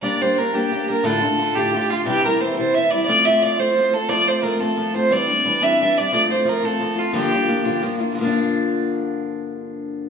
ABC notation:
X:1
M:6/8
L:1/8
Q:3/8=118
K:Gdor
V:1 name="Fiddle"
d c B G2 B | A3 G2 F | G B c c e d | d e d c2 A |
d c B A2 c | d3 e2 d | d c B A2 F | G4 z2 |
z6 | z6 |]
V:2 name="Steel-string acoustic guitar"
[G,B,DG] [B,DG] [G,B,DG] [G,B,DG] [G,B,DG] [B,DG] | [D,,A,,D,A,DF] [D,A,DF] [D,A,DF] [D,,A,,D,A,DF] [D,A,DF] [D,A,DF] | [C,E,G,CE] [G,CE] [E,G,CE] [C,E,G,CE] [E,G,CE] [G,CE] | [F,A,CF] [A,CF] [F,A,CF] [F,A,CF] [F,A,CF] [A,CF] |
[F,A,CF] [A,CF] [F,A,CF] [F,A,CF] [F,A,CF] [A,CF] | [E,G,CD] [G,CD] [E,G,CD] [E,G,CD] [E,G,CD] [G,CD] | [F,A,CF] [A,CF] [F,A,CF] [F,A,CF] [F,A,CF] [A,CF] | [G,,D,F,B,DF] [F,B,DF] [F,B,DF] [G,,D,F,B,DF] [F,B,DF] [F,B,DF] |
[G,,D,F,B,DF]6- | [G,,D,F,B,DF]6 |]